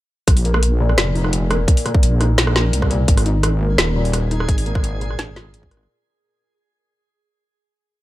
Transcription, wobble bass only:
0.28 A#1
0.98 F1
2.03 A#1
2.73 C2
3.08 G#1
3.78 D#1
4.49 G#1
5.18 G#1

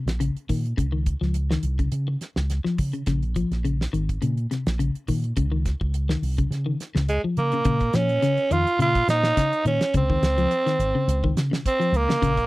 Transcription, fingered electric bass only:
0.05 A#1
0.35 muted fingered electric bass stroke
0.49 A#2
0.78 C#2
1.21 C#2
1.63 C2
1.92 C#3
2.36 C#2
2.78 C#3
3.07 A#1
3.51 A#1
3.93 G#1
4.22 A#2
4.67 A#1
4.95 muted fingered electric bass stroke
5.08 A#2
5.37 C#2
5.81 C#2
6.22 C2
6.51 C#3
6.95 C#2
7.24 muted fingered electric bass stroke
7.37 C#3
7.65 A#2
7.94 A#2
8.51 F2
8.66 muted fingered electric bass stroke
8.79 A#2
9.08 A#2
9.65 A#2
9.94 C#2
10.22 C#2
10.79 G#1
11.08 C#2
11.35 C#3
11.92 C#2
12.22 A#1

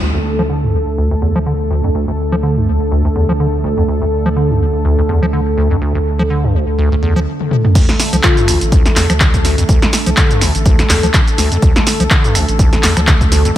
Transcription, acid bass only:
0.01 D2
0.15 D2
0.39 F3
0.50 D3
0.63 G2
0.74 D2
0.98 D2
1.11 D2
1.22 E2
1.36 F3
1.46 D3
1.71 D2
1.84 F2
1.95 D2
2.08 D2
2.32 F3
2.43 D3
2.56 G2
2.67 D2
2.91 D2
3.05 D2
3.16 E2
3.29 F3
3.40 D3
3.64 D2
3.78 F2
3.88 D2
4.02 D2
4.26 F3
4.36 D3
4.50 G2
4.61 D2
4.85 D2
4.98 D2
5.09 E2
5.22 F3
5.33 D3
5.57 D2
5.71 F2
5.82 D2
5.95 D2
6.19 F3
6.30 D3
6.44 G2
6.54 D2
6.78 D2
6.92 D2
7.03 E2
7.16 F3
7.75 D2
7.89 D2
8.13 F3
8.24 D3
8.37 G2
8.48 D2
8.72 D2
8.86 D2
8.96 E2
9.10 F3
9.20 D3
9.45 D2
9.58 F2
9.69 D2
9.82 D2
10.07 F3
10.17 D3
10.31 G2
10.41 D2
10.66 D2
10.79 D2
10.90 E2
11.03 F3
11.14 D3
11.38 D2
11.52 F2
11.62 D2
11.76 D2
12.00 F3
12.11 D3
12.24 G2
12.35 D2
12.59 D2
12.73 D2
12.83 E2
12.97 F3
13.07 D3
13.32 D2
13.45 F2

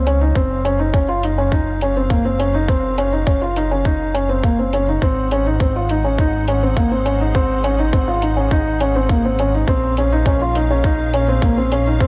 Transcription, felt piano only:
0.07 C#4
0.21 D#4
0.36 C4
0.65 C#4
0.79 D#4
0.94 C#4
1.09 F4
1.24 D#4
1.38 C#4
1.53 D#4
1.82 C#4
1.96 C4
2.10 A#3
2.25 C4
2.39 C#4
2.54 D#4
2.69 C4
2.98 C#4
3.13 D#4
3.27 C#4
3.42 F4
3.56 D#4
3.71 C#4
3.86 D#4
4.14 C#4
4.29 C4
4.44 A#3
4.59 C4
4.73 C#4
4.88 D#4
5.03 C4
5.32 C#4
5.46 D#4
5.61 C4
5.76 F4
5.90 D#4
6.04 C#4
6.20 D#4
6.48 C#4
6.63 C4
6.77 A#3
6.92 C4
7.06 C#4
7.21 D#4
7.35 C4
7.64 C#4
7.79 D#4
7.93 C4
8.08 F4
8.22 D#4
8.37 C#4
8.52 D#4
8.81 C#4
8.95 C4
9.10 A#3
9.25 C4
9.40 C#4
9.54 D#4
9.69 C4
9.98 C#4
10.12 D#4
10.27 C#4
10.41 F4
10.56 D#4
10.70 C#4
10.85 D#4
11.14 C#4
11.28 C4
11.43 A#3
11.57 C4
11.72 C#4
11.87 D#4
12.01 C4

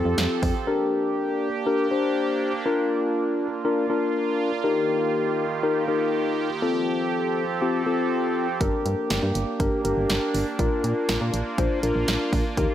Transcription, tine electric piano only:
Already playing: C4 F4 A4
0.67 D4 G4 A#4
1.67 D4 G4 A#4
1.91 D4 G4 C5
2.66 D4 F4 A#4
3.65 D4 F4 A#4
3.90 D4 F4 A#4
4.64 D#4 G4 A#4
5.63 D#4 G4 A#4
5.88 D#4 G4 A#4
6.62 C4 F4 A4
7.62 C4 F4 G4
7.86 C4 F4 A4
8.61 D4 G4 A#4
9.60 D4 G4 A#4
9.85 D4 G4 A#4
10.59 D4 F4 A#4
11.58 D4 F4 C5
11.83 D4 F4 A#4
12.57 D#4 G4 A#4

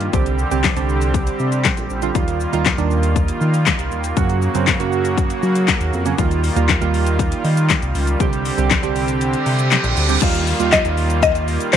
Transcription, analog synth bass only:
0.13 C2
0.51 C2
0.77 C2
1.40 C3
1.77 A#1
1.90 A#1
2.15 D#2
2.53 D#2
2.78 D#2
3.41 D#3
3.79 C2
3.92 D#2
4.17 F#2
4.55 F#2
4.80 F#2
5.43 F#3
5.81 D#2
5.93 F2
6.18 D#2
6.56 D#2
6.81 D#2
7.44 D#3
7.82 C2
7.95 C#2
8.20 C2
8.58 C2
8.83 C2
9.46 C3
9.84 A#1
9.97 D2
10.22 D#2
10.60 D#2
10.85 D#2
11.73 D#2

